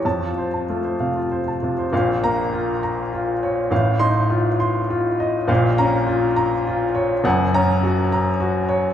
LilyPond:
<<
  \new Staff \with { instrumentName = "Upright piano" } { \time 6/8 \key bes \minor \tempo 4. = 67 << { a''8 r2 r8 | r8 bes''4 r4. | r8 c'''4 r4. | r8 bes''4 r4. |
r8 bes''4 r4. | } \\ { r16 f'16 c''16 a''16 f'16 c''16 f''16 f'16 c''16 a''16 f'16 c''16 | f''8. r16 f'8 bes''8 f'8 des''8 | f''8. r16 f'8 c'''8 f'8 ees''8 | f''8. r16 f'8 bes''8 f'8 des''8 |
ges''8. r16 ges'8 bes''8 ges'8 des''8 | } >> }
  \new Staff \with { instrumentName = "Upright piano" } { \clef bass \time 6/8 \key bes \minor f,4 a8 c4 c8 | <bes,, bes,>8 bes4 r4. | <a,, a,>8 ees'4 r4. | <bes,, bes,>8 des'4 r4. |
<ges,, ges,>8 des'4 r4. | }
>>